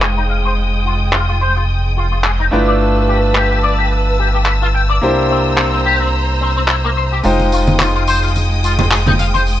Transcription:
0.00 2.50 F1 medium
0.00 2.49 G#3 medium
0.00 2.49 D#4 medium
0.00 2.50 F4 medium
0.00 0.07 G#4 medium
0.00 2.50 C5 medium
0.00 2.49 G5 medium
0.00 2.50 G5 medium
0.00 2.49 D#6 medium
0.00 clap loud
0.18 0.21 D#4 medium
0.30 0.35 F5 medium
0.45 0.52 C5 medium
0.85 0.93 F4 medium
1.13 1.25 F4 medium
1.13 clap loud
1.29 1.35 F4 medium
1.41 1.53 C5 medium
1.56 1.63 F4 medium
1.97 2.04 F4 medium
2.12 2.16 F4 medium
2.24 2.29 G#4 medium
2.24 clap loud
2.40 2.44 D#4 medium
2.51 5.00 G1 medium
2.51 4.99 A3 medium
2.51 4.99 D4 medium
2.51 4.99 E4 medium
2.51 5.00 F4 medium
2.51 5.00 B4 medium
2.51 2.57 G5 medium
2.51 5.00 A5 medium
2.51 7.21 E6 medium
2.68 2.74 D5 medium
3.08 3.16 G4 medium
3.35 3.47 G4 medium
3.35 clap loud
3.51 3.57 G4 medium
3.63 3.75 D5 medium
3.78 3.85 G4 medium
4.19 4.27 G4 medium
4.34 4.38 G4 medium
4.46 4.51 B4 medium
4.46 clap loud
4.62 4.66 F4 medium
4.74 4.79 G5 medium
4.89 4.96 D5 medium
5.01 7.22 C2 medium
5.01 7.21 A#3 medium
5.01 7.21 D4 medium
5.01 7.22 E4 medium
5.01 7.22 G4 medium
5.01 7.23 C5 medium
5.01 7.22 C5 medium
5.01 7.22 A#5 medium
5.30 5.38 C4 medium
5.57 5.69 C4 medium
5.57 clap loud
5.73 5.79 C4 medium
5.85 5.97 G4 medium
6.01 6.07 C4 medium
6.41 6.49 C4 medium
6.57 6.60 C4 medium
6.68 6.74 E4 medium
6.68 clap loud
6.84 6.88 A#3 medium
6.97 7.02 C5 medium
7.12 7.18 G4 medium
7.23 9.60 F1 medium
7.23 9.60 G#3 medium
7.23 9.60 D#4 medium
7.23 9.60 F4 medium
7.23 9.60 C5 medium
7.23 9.60 G5 medium
7.23 9.60 D#6 medium
7.23 tambourine soft
7.40 tambourine soft
7.40 muted conga soft
7.52 7.60 F4 medium
7.52 tambourine medium
7.67 tambourine soft
7.67 high conga medium
7.80 7.92 F4 medium
7.80 clap loud
7.80 tambourine soft
7.80 muted conga medium
7.95 8.02 F4 medium
7.95 tambourine soft
8.07 8.19 C5 medium
8.07 tambourine medium
8.23 8.30 F4 medium
8.23 tambourine soft
8.36 tambourine soft
8.36 muted conga soft
8.51 tambourine soft
8.63 8.71 F4 medium
8.63 tambourine medium
8.79 8.83 F4 medium
8.79 tambourine soft
8.79 muted conga medium
8.79 low conga medium
8.91 8.96 G#4 medium
8.91 clap loud
8.91 tambourine soft
9.06 9.10 D#4 medium
9.06 tambourine soft
9.06 high conga medium
9.06 low conga medium
9.19 9.24 F5 medium
9.19 tambourine medium
9.34 9.40 C5 medium
9.34 tambourine soft
9.34 muted conga soft
9.47 tambourine soft

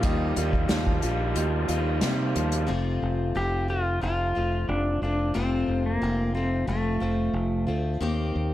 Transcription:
0.00 0.34 D#2 medium
0.00 0.36 D#3 medium
0.00 1.70 D#3 medium
0.00 0.69 F3 medium
0.00 0.35 G3 medium
0.00 0.37 A#3 medium
0.00 0.70 D#4 medium
0.00 0.59 F4 loud
0.00 0.59 G4 loud
0.00 kick loud
0.00 closed hi-hat medium
0.04 0.37 G3 medium
0.04 2.68 G3 medium
0.04 0.36 D#4 medium
0.04 2.67 D#4 medium
0.04 0.35 F4 loud
0.04 2.68 F4 medium
0.04 0.60 D#5 loud
0.36 0.67 D#2 medium
0.36 1.01 G3 medium
0.36 0.68 A#3 medium
0.36 0.69 D#4 medium
0.36 0.70 F4 medium
0.36 closed hi-hat medium
0.53 kick medium
0.68 1.00 D#2 medium
0.68 1.34 F3 medium
0.68 1.02 G3 medium
0.68 1.03 A#3 medium
0.68 1.03 D#4 medium
0.68 1.25 F4 medium
0.68 1.01 F4 medium
0.68 1.26 G4 medium
0.68 1.26 F5 medium
0.68 snare loud
0.68 closed hi-hat medium
0.87 kick medium
1.02 1.33 A#1 medium
1.02 2.01 G3 medium
1.02 1.70 A#3 soft
1.02 1.68 D#4 soft
1.02 1.67 F4 medium
1.02 closed hi-hat medium
1.35 1.66 D#2 medium
1.35 2.34 F3 medium
1.35 1.91 F4 medium
1.35 1.92 G4 medium
1.35 1.92 D#5 medium
1.35 closed hi-hat medium
1.68 1.99 D#2 medium
1.68 2.00 A#3 soft
1.68 2.69 D#4 medium
1.68 2.01 D#4 medium
1.68 2.02 F4 medium
1.68 closed hi-hat medium
2.01 2.33 C3 medium
2.01 2.67 G3 medium
2.01 2.69 G3 medium
2.01 2.67 A#3 medium
2.01 2.68 D#4 medium
2.01 2.58 F4 medium
2.01 2.67 F4 medium
2.01 2.58 G4 medium
2.01 2.59 C5 medium
2.01 snare loud
2.01 closed hi-hat medium
2.35 2.66 D#2 medium
2.35 2.69 F3 medium
2.35 closed hi-hat medium
2.52 closed hi-hat medium
2.67 3.02 F1 medium
2.67 3.34 F2 medium
2.67 3.35 C3 medium
2.67 3.34 F3 medium
2.67 3.34 A3 medium
2.67 3.36 C4 medium
2.67 3.35 F4 medium
3.02 3.35 F1 medium
3.35 4.00 F1 medium
3.35 3.68 F3 soft
3.35 3.69 A3 medium
3.35 3.68 C4 medium
3.35 3.67 F4 medium
3.35 3.67 G4 medium
3.68 4.00 F3 soft
3.68 4.01 A3 soft
3.68 4.02 C4 soft
3.68 4.02 F4 soft
4.01 4.35 F1 medium
4.01 4.35 F3 medium
4.01 4.35 A3 medium
4.01 4.35 C4 medium
4.01 4.34 F4 medium
4.35 4.68 F1 medium
4.35 5.03 F3 soft
4.35 5.02 A3 soft
4.35 5.03 C4 soft
4.35 5.01 F4 soft
4.68 5.01 F1 medium
4.68 5.00 D4 medium
5.02 5.34 F1 medium
5.02 5.33 F3 soft
5.02 5.34 A3 soft
5.02 5.34 C4 soft
5.02 5.37 D4 medium
5.02 5.34 F4 soft
5.34 5.67 F1 medium
5.34 6.01 F2 medium
5.34 6.01 C3 medium
5.34 6.00 F3 medium
5.34 6.02 A3 medium
5.34 6.03 C4 medium
5.34 6.02 F4 medium
5.68 6.00 F1 medium
5.86 6.35 A#3 medium
6.02 6.66 F1 medium
6.02 6.35 F3 medium
6.02 6.35 C4 medium
6.02 6.33 F4 medium
6.34 6.66 F3 soft
6.34 6.67 A3 soft
6.34 6.67 C4 soft
6.34 6.68 F4 soft
6.67 7.00 F1 medium
6.67 7.01 F3 medium
6.67 7.01 A3 medium
6.67 7.00 C4 medium
6.67 6.99 F4 medium
7.00 7.33 F1 medium
7.00 7.68 F3 soft
7.00 7.67 A3 soft
7.00 7.67 C4 soft
7.00 7.65 F4 medium
7.33 7.66 F1 medium
7.67 8.00 D2 medium
7.67 8.00 F3 soft
7.67 8.01 A3 soft
7.67 8.00 C4 soft
7.67 8.01 F4 soft
8.01 8.33 D#2 medium
8.01 8.54 D#3 medium
8.01 8.54 A#3 medium
8.01 8.54 C4 medium
8.01 8.54 G4 medium
8.36 8.54 D#2 medium

